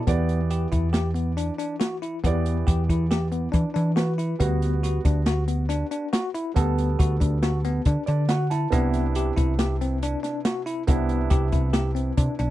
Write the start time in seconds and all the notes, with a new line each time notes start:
0.07 E2 E3 B3 G4 D5, kick, closed hi-hat
0.29 closed hi-hat
0.50 G4, closed hi-hat
0.72 E2 E4, kick, closed hi-hat
0.93 G4, snare, closed hi-hat
1.15 B3, closed hi-hat
1.37 D4, closed hi-hat
1.59 D4, closed hi-hat
1.80 F#4, snare, closed hi-hat
2.02 E4, closed hi-hat
2.24 E2 E3 B3 G4 D5, kick, closed hi-hat
2.46 closed hi-hat
2.67 E2 G4, kick, closed hi-hat
2.89 E2 E4, kick, closed hi-hat
3.11 G4, snare, closed hi-hat
3.32 B3, closed hi-hat
3.52 E3 D4, kick, closed hi-hat
3.74 E3 D4, closed hi-hat
3.96 F#4 B4, snare, closed hi-hat
4.18 E4, closed hi-hat
4.39 D2 G3 B3 F#4, kick, closed hi-hat
4.62 snare, closed hi-hat
4.83 F#4, snare, closed hi-hat
5.05 D2 D4, kick, snare, closed hi-hat
5.26 F#4, snare, closed hi-hat
5.48 B3, closed hi-hat
5.69 D4, snare, closed hi-hat
5.91 D4, closed hi-hat
6.13 F#4, snare, closed hi-hat
6.34 E4, closed hi-hat
6.54 D2 G3 B3 A4, kick, closed hi-hat
6.78 closed hi-hat
6.99 D2 F#4, kick, closed hi-hat
7.20 D2 D4, kick, closed hi-hat
7.43 F#4, snare, closed hi-hat
7.65 B3, snare, closed hi-hat
7.85 D3 D4, kick, closed hi-hat
8.06 D3 D4 D5, closed hi-hat
8.29 F#4 F#5, snare, closed hi-hat
8.50 E4 A5, snare, closed hi-hat
8.70 C2 C3 B3 D4 E4, kick, closed hi-hat
8.94 snare, closed hi-hat
9.15 G4, closed hi-hat
9.36 C2 E4, kick, closed hi-hat
9.59 G4, snare, closed hi-hat
9.81 C4, snare, closed hi-hat
10.03 D4, closed hi-hat
10.23 D4, snare, closed hi-hat
10.45 F#4, snare, closed hi-hat
10.66 E4, closed hi-hat
10.87 C2 C3 B3 D4 E4, kick, closed hi-hat
11.09 closed hi-hat
11.30 C2 G4, kick, closed hi-hat
11.52 C2 E4, kick, closed hi-hat
11.73 G4, snare, closed hi-hat
11.95 C4, closed hi-hat
12.17 C3 D4, kick, closed hi-hat
12.39 B1 D4, closed hi-hat